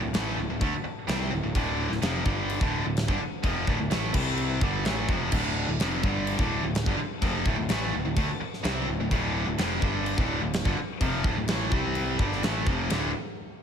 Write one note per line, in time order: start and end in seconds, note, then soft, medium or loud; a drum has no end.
0.03 0.14 D1 medium
0.03 0.14 D2 medium
0.03 0.13 A2 medium
0.14 0.36 A1 medium
0.14 0.37 A2 medium
0.14 0.37 E3 loud
0.14 0.38 A3 medium
0.14 snare loud
0.14 crash medium
0.37 0.49 D1 medium
0.37 0.49 D2 medium
0.37 0.49 A2 medium
0.49 0.60 D1 medium
0.49 0.62 D2 medium
0.49 0.61 A2 medium
0.61 0.72 D2 loud
0.61 0.72 D3 medium
0.61 0.72 A3 loud
0.61 kick loud
0.61 crash medium
0.73 muted picked electric bass stroke soft
0.73 muted distorted electric guitar stroke medium
0.84 muted distorted electric guitar stroke medium
0.84 muted picked electric bass stroke soft
1.08 1.30 C2 medium
1.08 1.31 C3 loud
1.08 1.31 G3 loud
1.08 1.32 C4 loud
1.08 snare loud
1.08 crash medium
1.31 1.42 D1 medium
1.31 1.42 D2 medium
1.31 1.42 A2 medium
1.43 1.55 D1 medium
1.43 1.54 D2 medium
1.43 1.54 A2 medium
1.55 1.88 D1 loud
1.55 1.88 D2 medium
1.55 1.89 A2 loud
1.55 1.90 D3 loud
1.55 kick loud
1.55 crash medium
1.90 2.01 D1 medium
1.90 2.02 D2 medium
1.90 2.02 A2 medium
1.90 snare soft
2.02 2.24 F1 medium
2.02 2.25 F2 medium
2.02 2.25 C3 loud
2.02 2.25 F3 loud
2.02 snare loud
2.02 crash medium
2.25 2.59 G1 loud
2.25 2.60 G2 medium
2.25 2.60 D3 medium
2.25 2.61 G3 loud
2.25 kick loud
2.50 crash medium
2.61 2.83 D1 medium
2.61 2.83 D2 medium
2.61 2.84 A2 medium
2.61 2.85 D3 loud
2.61 kick loud
2.85 3.07 D1 medium
2.85 3.04 D2 medium
2.85 3.04 A2 medium
2.97 snare loud
2.97 crash medium
3.08 3.20 G1 loud
3.08 3.20 G2 medium
3.08 3.20 D3 loud
3.08 kick loud
3.21 muted distorted electric guitar stroke medium
3.21 muted picked electric bass stroke soft
3.43 3.66 F1 medium
3.43 3.67 F2 loud
3.43 3.67 C3 loud
3.43 3.67 F3 loud
3.43 kick loud
3.43 crash medium
3.67 3.79 D1 medium
3.67 3.78 D2 medium
3.67 3.79 A2 loud
3.67 kick loud
3.79 3.91 D1 medium
3.79 3.91 D2 medium
3.79 3.90 A2 medium
3.91 4.13 A1 loud
3.91 4.14 A2 loud
3.91 4.14 E3 loud
3.91 4.15 A3 loud
3.91 snare loud
3.91 crash medium
4.14 4.58 C2 medium
4.14 4.61 C3 medium
4.14 4.61 G3 loud
4.14 4.62 C4 loud
4.14 kick loud
4.14 crash loud
4.38 crash medium
4.61 4.84 G1 medium
4.61 4.85 G2 medium
4.61 4.85 D3 loud
4.61 4.85 G3 loud
4.61 kick loud
4.85 5.08 A1 loud
4.85 5.09 A2 loud
4.85 5.09 E3 loud
4.85 5.09 A3 loud
4.85 snare loud
4.85 crash medium
5.09 5.31 F1 loud
5.09 5.32 F2 loud
5.09 5.32 C3 loud
5.09 5.33 F3 loud
5.09 kick loud
5.32 5.66 D1 loud
5.32 5.67 D2 medium
5.32 5.67 A2 loud
5.32 5.68 D3 loud
5.32 kick loud
5.32 crash loud
5.32 crash medium
5.68 5.79 D1 medium
5.68 5.80 D2 medium
5.68 5.80 A2 medium
5.80 6.02 F1 medium
5.80 6.03 F2 loud
5.80 6.03 C3 loud
5.80 6.04 F3 loud
5.80 snare loud
5.80 crash medium
6.03 6.37 G1 medium
6.03 6.39 G2 medium
6.03 6.39 D3 loud
6.03 6.39 G3 loud
6.03 kick loud
6.27 crash medium
6.39 6.61 D1 medium
6.39 6.63 D2 medium
6.39 6.63 A2 medium
6.39 6.63 D3 loud
6.39 kick loud
6.63 6.85 D1 medium
6.63 6.82 D2 medium
6.63 6.83 A2 medium
6.75 snare loud
6.75 crash medium
6.86 6.98 G1 medium
6.86 6.98 G2 loud
6.86 6.98 D3 loud
6.86 kick loud
6.98 muted distorted electric guitar stroke medium
6.98 muted picked electric bass stroke soft
7.22 7.44 F1 loud
7.22 7.45 F2 medium
7.22 7.45 C3 loud
7.22 7.45 F3 loud
7.22 kick loud
7.22 crash medium
7.46 7.57 D1 loud
7.46 7.56 D2 medium
7.46 7.57 A2 loud
7.46 kick loud
7.58 7.69 D1 medium
7.58 7.68 D2 medium
7.58 7.68 A2 medium
7.69 7.92 A1 loud
7.69 7.92 A2 medium
7.69 7.93 E3 medium
7.69 7.93 A3 loud
7.69 snare loud
7.69 crash medium
7.93 8.04 D1 medium
7.93 8.04 D2 medium
7.93 8.04 A2 medium
8.05 8.16 D1 medium
8.05 8.17 D2 medium
8.05 8.17 A2 medium
8.16 8.28 D2 loud
8.16 8.28 D3 loud
8.16 8.28 A3 loud
8.16 kick loud
8.16 crash medium
8.28 muted distorted electric guitar stroke medium
8.28 muted picked electric bass stroke soft
8.41 muted distorted electric guitar stroke medium
8.41 muted picked electric bass stroke soft
8.53 snare soft
8.63 8.86 C2 medium
8.63 8.87 C3 loud
8.63 8.87 G3 loud
8.63 8.87 C4 loud
8.63 snare loud
8.63 crash medium
8.87 8.99 D1 medium
8.87 8.99 D2 medium
8.87 9.00 A2 medium
8.99 9.11 D1 medium
8.99 9.10 D2 medium
8.99 9.11 A2 medium
9.11 9.45 D1 loud
9.11 9.45 D2 loud
9.11 9.46 A2 loud
9.11 9.47 D3 loud
9.11 kick loud
9.11 crash medium
9.46 9.58 D1 medium
9.46 9.58 D2 medium
9.46 9.59 A2 medium
9.58 9.81 F1 medium
9.58 9.82 F2 loud
9.58 9.82 C3 loud
9.58 9.82 F3 loud
9.58 snare loud
9.58 crash medium
9.82 10.15 G1 medium
9.82 10.17 G2 loud
9.82 10.17 D3 medium
9.82 10.18 G3 loud
9.82 kick loud
10.06 crash medium
10.18 10.40 D1 loud
10.18 10.41 D2 medium
10.18 10.41 A2 medium
10.18 10.41 D3 loud
10.18 kick loud
10.42 10.64 D1 medium
10.42 10.61 D2 medium
10.42 10.61 A2 medium
10.53 snare loud
10.53 crash medium
10.65 10.76 G1 loud
10.65 10.76 G2 loud
10.65 10.77 D3 loud
10.65 kick loud
10.78 muted picked electric bass stroke soft
10.78 muted distorted electric guitar stroke medium
11.01 11.23 F1 loud
11.01 11.24 F2 medium
11.01 11.24 C3 loud
11.01 11.24 F3 loud
11.01 kick loud
11.01 crash medium
11.24 11.35 D1 loud
11.24 11.36 D2 medium
11.24 11.36 A2 loud
11.24 kick loud
11.36 11.47 D1 medium
11.36 11.49 D2 medium
11.36 11.48 A2 medium
11.48 11.70 A1 medium
11.48 11.72 A2 loud
11.48 11.72 E3 medium
11.48 11.72 A3 loud
11.48 snare loud
11.48 crash medium
11.72 12.16 C2 medium
11.72 12.19 C3 medium
11.72 12.19 G3 loud
11.72 12.19 C4 loud
11.72 kick loud
11.95 crash medium
12.19 12.41 G1 medium
12.19 12.43 G2 loud
12.19 12.43 D3 medium
12.19 12.43 G3 medium
12.19 kick loud
12.32 snare soft
12.43 12.65 A1 medium
12.43 12.66 A2 medium
12.43 12.66 E3 loud
12.43 12.67 A3 loud
12.43 snare loud
12.43 crash medium
12.66 12.89 F1 medium
12.66 12.90 F2 medium
12.66 12.91 C3 loud
12.66 12.90 F3 loud
12.66 kick loud
12.90 13.13 D1 loud
12.90 13.10 D2 loud
12.90 13.10 A2 loud
12.90 13.10 D3 loud
12.90 snare loud
12.90 ride bell medium